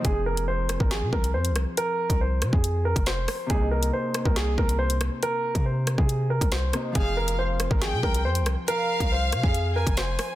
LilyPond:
<<
  \new Staff \with { instrumentName = "Violin section" } { \time 4/4 \key f \minor \tempo 4 = 139 r1 | r1 | r1 | r1 |
f''4 r4 g''4 r4 | f''2~ f''8 aes''4. | }
  \new Staff \with { instrumentName = "Grand piano" } { \time 4/4 \key f \minor aes'8 bes'8 c''8. bes'16 aes'8 bes'8 c''8 r8 | bes'4 c''8. aes'8. bes'8 c''4 | aes'8 bes'8 c''8. bes'16 aes'8 bes'8 c''8 r8 | bes'4 c''8. aes'8. bes'8 c''4 |
aes'8 bes'8 c''8. bes'16 aes'8 bes'8 c''8 r8 | bes'4 c''8. aes'8. bes'8 c''4 | }
  \new Staff \with { instrumentName = "Harp" } { \time 4/4 \key f \minor <f c' aes'>1~ | <f c' aes'>1 | <c bes ees'>1~ | <c bes ees'>2.~ <c bes ees'>8 <c bes ees'>8 |
<f c' aes'>1~ | <f c' aes'>1 | }
  \new Staff \with { instrumentName = "808-style bass" } { \clef bass \time 4/4 \key f \minor f,,4.~ f,,16 aes,,8 c16 c,8 f,16. c,16. r16 | r8. c,8. c16 f,4 f,,8. r8 | c,4 r8. c,8. c,4~ c,16 r16 | r8. c4 c4 c,8. r8 |
f,,4.~ f,,16 aes,,8 c16 c,8 f,16. c,16. r16 | r8. c,8. c16 f,4 f,,8. r8 | }
  \new DrumStaff \with { instrumentName = "Drums" } \drummode { \time 4/4 <hh bd>8. hh16 r8 <hh ss>16 bd16 <hh sn>8 bd16 hh16 r16 hh16 <hh ss>8 | hh8. <hh bd>16 r8 <hh ss>16 bd16 hh8. <hh bd>16 <hh sn>8 <hho ss>8 | <hh bd>8. hh16 r8 <hh ss>16 bd16 <hh sn>8 bd16 hh16 r16 hh16 <hh ss>8 | hh8. <hh bd>16 r8 <hh ss>16 bd16 hh8. <hh bd>16 <hh sn>8 <hh ss>8 |
<hh bd>8. hh16 r8 <hh ss>16 bd16 <hh sn>8 bd16 hh16 r16 hh16 <hh ss>8 | hh8. <hh bd>16 r8 <hh ss>16 bd16 hh8. <hh bd>16 <hh sn>8 <hho ss>8 | }
>>